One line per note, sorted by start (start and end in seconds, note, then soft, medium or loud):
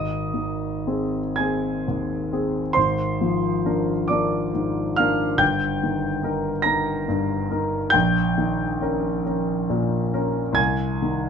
0.00 2.70 G#1 soft
0.00 1.34 D#5 soft
0.00 1.38 D#6 medium
0.34 1.19 D#3 soft
0.87 1.35 C4 soft
0.87 1.35 G#4 soft
1.36 1.83 C4 soft
1.36 1.83 G#4 soft
1.36 2.71 G#5 soft
1.36 2.74 G#6 medium
1.88 2.59 D#2 soft
2.33 2.72 C4 soft
2.33 2.73 G#4 soft
2.73 5.37 G#1 soft
2.73 4.05 C5 medium
2.73 4.08 C6 medium
3.21 3.92 F3 soft
3.66 4.06 D4 soft
3.66 4.06 A#4 soft
4.08 4.51 D4 soft
4.08 4.51 A#4 soft
4.08 4.94 D5 soft
4.08 4.97 D6 medium
4.54 5.24 G#2 soft
4.96 5.37 D4 soft
4.96 5.38 A#4 soft
4.96 5.37 F5 medium
4.96 5.40 F6 medium
5.37 7.89 G1 soft
5.37 6.62 G5 medium
5.37 6.65 G6 medium
5.83 6.50 D#3 soft
6.23 6.62 D#4 soft
6.23 6.63 A#4 soft
6.62 7.05 D#4 soft
6.62 7.05 A#4 soft
6.62 7.89 A#5 soft
6.62 7.92 A#6 medium
7.08 7.77 G2 soft
7.51 7.90 D#4 soft
7.51 7.90 A#4 soft
7.90 10.54 A#1 medium
7.90 10.53 G5 medium
7.90 10.56 G6 medium
8.38 9.08 D#3 soft
8.81 9.21 C#4 soft
8.81 9.22 A#4 soft
9.26 9.66 C#4 soft
9.26 9.66 A#4 soft
9.70 10.40 A#2 soft
10.14 10.54 C#4 soft
10.14 10.54 A#4 soft
10.53 11.29 C2 soft
10.53 11.29 G#5 medium
10.53 11.29 G#6 medium
11.02 11.29 D#3 soft